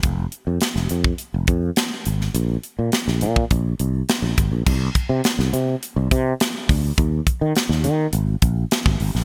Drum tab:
CC |----------------|----------------|x---------------|----------------|
HH |x-x-x-x-x-x-x-x-|x-x-x-x-x-x-x-x-|--x-x-x-x-x-x-o-|x-x-x-x-x-x-x-o-|
SD |----oo------o--o|----oo------o---|----oo------o---|----oo------o--o|
BD |o------o--o-----|-------oo-----o-|o-o-------o---o-|o-o-------o--o--|